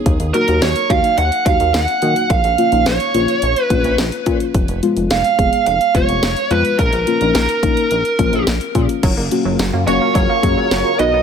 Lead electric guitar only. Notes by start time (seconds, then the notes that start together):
0.34 A#4
0.62 C#5
0.90 F5
1.18 F#5
1.46 F5
1.74 F#5
2.31 F5
2.87 C#5
3.62 B4
5.11 F5
5.67 F5
5.95 C#5
6.51 B4
6.79 A#4
7.35 A#4
9.87 C#5
10.15 C#5
11.00 D#5